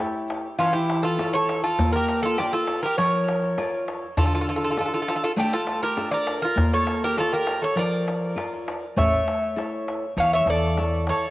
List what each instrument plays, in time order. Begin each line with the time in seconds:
Already playing: bouzouki E4 G4
0.00 nylon-string guitar E4 A4 C#5, darbuka tek
0.30 darbuka tek
0.58 nylon-string guitar E3, bouzouki C#4 F4, darbuka tek
0.73 bouzouki E4 G4
0.90 darbuka tek
1.03 bouzouki F4 A4, darbuka tek
1.19 nylon-string guitar E4 A4 C#5, darbuka tek
1.33 bouzouki A4 C#5
1.49 darbuka tek
1.64 bouzouki F4 A4, darbuka tek
1.79 nylon-string guitar A#3, darbuka dum
1.93 bouzouki G4 A#4
2.08 darbuka tek
2.22 bouzouki F4 A4
2.38 bouzouki D4 G4, nylon-string guitar F4 A#4 D5, darbuka tek
2.53 bouzouki F4 A4
2.67 darbuka tek
2.83 bouzouki G4 A#4
2.98 nylon-string guitar F3, bouzouki A#4 C#5, darbuka tek
3.28 darbuka tek
3.43 darbuka tek
3.58 nylon-string guitar F4 A#4 D5, darbuka tek
3.88 darbuka tek
4.02 darbuka tek
4.17 nylon-string guitar D3, bouzouki F4 A4, darbuka dum
4.25 bouzouki F4 A4
4.35 bouzouki F4 A4
4.41 bouzouki F4 A4
4.49 bouzouki F4 A4
4.56 bouzouki F4 A4
4.64 bouzouki F4 A4
4.70 bouzouki F4 A4
4.77 nylon-string guitar D4 F4 A4, bouzouki F4 A4, darbuka tek
4.85 bouzouki F4 A4
4.94 bouzouki F4 A4
5.02 bouzouki F4 A4
5.08 bouzouki F4 A4, darbuka tek
5.15 bouzouki F4 A4
5.24 bouzouki F4 A4
5.36 nylon-string guitar A3, bouzouki D4 G4, darbuka tek
5.53 bouzouki F4 A4
5.67 darbuka tek
5.82 bouzouki G4 A#4, darbuka tek
5.97 nylon-string guitar D4 F4 A4, darbuka tek
6.12 bouzouki A#4 D5
6.27 darbuka tek
6.42 bouzouki F4 A#4, darbuka tek
6.56 nylon-string guitar A#3, darbuka dum
6.74 bouzouki A4 C#5
6.87 darbuka tek
7.04 bouzouki G4 A#4
7.17 nylon-string guitar F4 A#4 D5, bouzouki F4 A4, darbuka tek
7.33 bouzouki G4 A#4
7.47 darbuka tek
7.62 bouzouki A4 C#5
7.76 nylon-string guitar F3, bouzouki A#4 D5, darbuka tek
8.08 darbuka tek
8.36 nylon-string guitar F4 A#4 D5, darbuka tek
8.53 darbuka tek
8.68 darbuka tek
8.96 upright bass A1, nylon-string guitar A3, bouzouki C#5 E5, darbuka dum
9.28 darbuka tek
9.56 nylon-string guitar E4 A4 C#5, darbuka tek
9.88 darbuka tek
10.17 upright bass E2, nylon-string guitar E3, bouzouki C#5 F5, darbuka tek
10.33 bouzouki C#5 E5
10.46 upright bass E2, bouzouki A4 D5, darbuka tek
10.77 nylon-string guitar E4 A4 C#5, darbuka tek
11.07 bouzouki A4 C#5, darbuka tek
11.21 darbuka tek